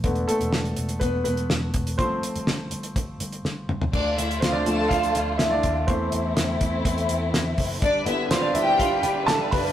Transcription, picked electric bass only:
\new Staff \with { instrumentName = "Picked electric bass" } { \clef bass \time 4/4 \key d \dorian \tempo 4 = 123 e,,8 r16 e,,16 e,,8 e,,8 e,,8 e,,8 e,,8 e,,8 | r8. g,,16 g,,8 g,,8 g,,8 g,,8 g,,8 g,,8 | d,8 d,8 d,8 d,8 d,8 d,8 d,8 dis,8 | e,8 e,8 e,8 e,8 e,8 e,8 e,8 fis,,8 |
g,,8 g,,8 g,,8 g,,8 g,,8 g,,8 g,,8 fis,,8 | }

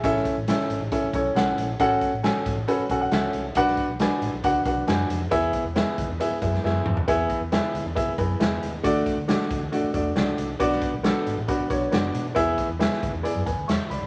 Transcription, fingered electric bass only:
\new Staff \with { instrumentName = "Fingered electric bass" } { \clef bass \time 4/4 \key a \major \tempo 4 = 136 a,,8 r16 a,,8 r16 gis,,16 a,,16 r8 b,,8 b,,8 bes,,8 | a,,8 r16 a,,8 r16 gis,,16 a,,16 r8 b,,8 cis,8 c,8 | b,,8 r16 b,,8 r16 a,,16 b,,16 cis,8 b,,8 fis,8 f,8 | r8. e,8 r16 d,16 e,16 r8 fis,8 fis,8 f,8 |
e,8 r16 e,8 r16 d,16 e,16 r8 fis,8 e,8 dis,8 | d,8 r16 d,8 r16 cis,16 d,16 r8 e,8 cis,8 c,8 | b,,8 r16 b,,8 r16 gis,,16 a,,16 r8 b,,8 fis,,8 b,8 | e,8 r16 e,8 r16 d,16 e,16 r16 fis,16 e,16 d,16 e,16 r16 cis,16 b,,16 | }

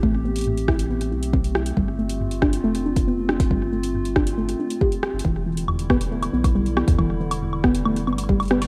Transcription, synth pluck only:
\new Staff \with { instrumentName = "Synth pluck" } { \time 4/4 \key g \mixolydian \tempo 4 = 138 a8 b8 a,8 e'8 b8 e'8 c'8 e'8 | g8 a8 g,8 d'8 a8 d'8 b8 d'8 | g8 a8 g,8 d'8 a8 d'8 g'8 g'8 | e8 e8 e,8 b8 a8 b8 g8 b8 |
e8 e8 e,8 b8 a8 b8 g8 b8 | }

